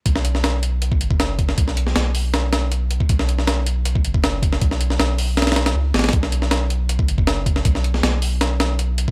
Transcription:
0.06 sub bass B1, kick, closed hi-hat
0.15 snare
0.25 closed hi-hat
0.35 snare
0.44 snare, closed hi-hat
0.63 closed hi-hat
0.82 closed hi-hat
0.92 kick
1.01 sub bass F#1, closed hi-hat
1.11 kick
1.20 snare, closed hi-hat
1.39 kick, closed hi-hat
1.49 snare
1.58 sub bass B1, kick, closed hi-hat
1.68 snare
1.77 closed hi-hat
1.87 snare
1.96 sub bass B1, snare, closed hi-hat
2.15 open hi-hat
2.34 snare, closed hi-hat
2.53 snare, closed hi-hat
2.72 closed hi-hat
2.91 closed hi-hat
3.00 kick
3.09 sub bass B1, kick, closed hi-hat
3.19 snare
3.29 closed hi-hat
3.39 snare
3.47 snare, closed hi-hat
3.66 closed hi-hat
3.85 closed hi-hat
3.95 kick
4.04 sub bass F#1, closed hi-hat
4.14 kick
4.24 snare, closed hi-hat
4.43 kick, closed hi-hat
4.53 snare
4.62 sub bass B1, kick, closed hi-hat
4.71 snare
4.81 closed hi-hat
4.90 snare
4.99 sub bass B1, snare, closed hi-hat
5.18 open hi-hat
5.37 snare, closed hi-hat
5.42 snare, closed hi-hat
5.47 snare, closed hi-hat
5.52 snare, closed hi-hat
5.56 snare, closed hi-hat
5.66 snare, closed hi-hat
5.75 sub bass C#2
5.94 sub bass A1, snare, closed hi-hat
5.99 snare, closed hi-hat
6.04 snare, closed hi-hat
6.09 snare, closed hi-hat
6.13 sub bass B1, kick, closed hi-hat
6.23 snare
6.32 closed hi-hat
6.42 snare
6.51 snare, closed hi-hat
6.70 closed hi-hat
6.89 closed hi-hat
6.99 kick
7.08 sub bass F#1, closed hi-hat
7.18 kick
7.27 snare, closed hi-hat
7.46 kick, closed hi-hat
7.56 snare
7.65 sub bass B1, kick, closed hi-hat
7.75 snare
7.84 closed hi-hat
7.94 snare
8.03 sub bass B1, snare, closed hi-hat
8.22 open hi-hat
8.41 snare, closed hi-hat
8.60 snare, closed hi-hat
8.79 closed hi-hat
8.98 closed hi-hat
9.08 kick

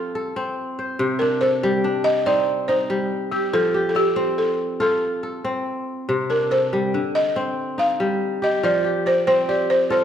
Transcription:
Already playing: kora F3 C4 F4 G4 A4, balafon A4
0.15 kora A4
0.36 kora C4
0.79 kora C5
0.99 kora C3
1.19 kora D4, balafon A#4
1.41 kora A4, balafon C5
1.63 kora G3
1.84 kora D4
2.04 balafon D#5
2.26 kora C4 D#4, balafon D5
2.68 kora D#4, balafon C5
2.90 kora G3
3.32 balafon G4, kora G4
3.53 kora F3, balafon A4
3.74 kora G4
3.89 balafon A4
3.95 balafon G4, kora D5
4.16 kora C4
4.38 balafon A4
4.80 kora F4 A4, balafon A4
5.23 kora A4
5.44 kora C4
6.09 kora C3
6.30 kora D4, balafon A#4
6.51 kora A4, balafon C5
6.73 kora G3
6.94 kora D3
7.15 balafon D#5
7.36 kora C4
7.78 kora D#4, balafon F5
8.00 kora G3
8.42 kora G4, balafon D#5
8.63 kora F3, balafon D5
8.84 kora G4
9.06 balafon C5, kora D5
9.27 kora C4, balafon C5
9.49 kora G4, balafon D5
9.70 balafon C5
9.90 kora F4 A4, balafon C5

